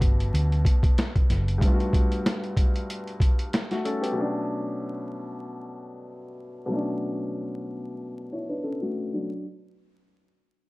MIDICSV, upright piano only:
0, 0, Header, 1, 2, 480
1, 0, Start_track
1, 0, Key_signature, 2, "minor"
1, 0, Tempo, 638298
1, 1214, Time_signature, 4, 2, 24, 8
1, 8043, End_track
2, 0, Start_track
2, 0, Title_t, "Upright piano"
2, 0, Program_c, 0, 0
2, 0, Control_c, 0, 64, 127
2, 0, Note_on_c, 0, 47, 67
2, 0, Note_on_c, 0, 55, 59
2, 0, Note_on_c, 0, 57, 59
2, 0, Note_on_c, 0, 59, 58
2, 0, Note_on_c, 0, 66, 71
2, 1163, Note_off_c, 0, 47, 0
2, 1171, Note_off_c, 0, 55, 0
2, 1180, Note_off_c, 0, 57, 0
2, 1187, Note_on_c, 0, 43, 65
2, 1189, Note_off_c, 0, 59, 0
2, 1198, Note_off_c, 0, 66, 0
2, 1205, Note_on_c, 0, 55, 63
2, 1222, Note_on_c, 0, 57, 62
2, 1240, Note_on_c, 0, 59, 62
2, 1259, Note_on_c, 0, 65, 58
2, 1290, Note_off_c, 0, 65, 0
2, 1307, Note_on_c, 0, 66, 73
2, 2629, Note_off_c, 0, 57, 0
2, 2638, Note_off_c, 0, 59, 0
2, 2672, Note_off_c, 0, 66, 0
2, 2794, Note_on_c, 0, 66, 67
2, 2798, Note_on_c, 0, 57, 59
2, 2892, Note_off_c, 0, 66, 0
2, 2894, Note_on_c, 0, 69, 74
2, 2895, Note_off_c, 0, 57, 0
2, 2899, Note_on_c, 0, 61, 58
2, 3018, Note_on_c, 0, 67, 66
2, 3019, Note_off_c, 0, 69, 0
2, 3022, Note_off_c, 0, 61, 0
2, 3024, Note_on_c, 0, 59, 56
2, 3090, Note_off_c, 0, 43, 0
2, 3094, Note_on_c, 0, 47, 63
2, 3099, Note_off_c, 0, 55, 0
2, 3111, Note_on_c, 0, 54, 58
2, 3130, Note_on_c, 0, 57, 59
2, 3142, Control_c, 0, 64, 0
2, 3148, Note_on_c, 0, 61, 57
2, 3165, Note_on_c, 0, 62, 74
2, 3250, Note_off_c, 0, 67, 0
2, 3252, Note_off_c, 0, 59, 0
2, 3293, Control_c, 0, 64, 127
2, 4996, Note_off_c, 0, 47, 0
2, 5008, Note_on_c, 0, 47, 69
2, 5012, Note_off_c, 0, 54, 0
2, 5022, Note_off_c, 0, 57, 0
2, 5026, Note_on_c, 0, 54, 59
2, 5031, Note_off_c, 0, 61, 0
2, 5039, Note_off_c, 0, 62, 0
2, 5044, Note_on_c, 0, 57, 61
2, 5061, Note_on_c, 0, 61, 61
2, 5080, Note_on_c, 0, 62, 74
2, 6216, Note_off_c, 0, 54, 0
2, 6225, Note_off_c, 0, 57, 0
2, 6234, Note_off_c, 0, 61, 0
2, 6243, Note_off_c, 0, 62, 0
2, 6261, Note_on_c, 0, 73, 65
2, 6265, Note_on_c, 0, 64, 52
2, 6383, Note_off_c, 0, 73, 0
2, 6385, Note_off_c, 0, 64, 0
2, 6386, Note_on_c, 0, 71, 68
2, 6390, Note_on_c, 0, 62, 57
2, 6488, Note_off_c, 0, 71, 0
2, 6491, Note_off_c, 0, 62, 0
2, 6495, Note_on_c, 0, 69, 70
2, 6500, Note_on_c, 0, 61, 59
2, 6620, Note_off_c, 0, 69, 0
2, 6622, Note_off_c, 0, 61, 0
2, 6632, Note_on_c, 0, 66, 71
2, 6636, Note_on_c, 0, 57, 54
2, 6857, Note_off_c, 0, 66, 0
2, 6859, Note_off_c, 0, 57, 0
2, 6870, Note_on_c, 0, 62, 60
2, 6875, Note_on_c, 0, 54, 52
2, 6921, Note_off_c, 0, 47, 0
2, 6982, Control_c, 0, 64, 0
2, 7096, Note_off_c, 0, 62, 0
2, 7098, Note_off_c, 0, 54, 0
2, 8043, End_track
0, 0, End_of_file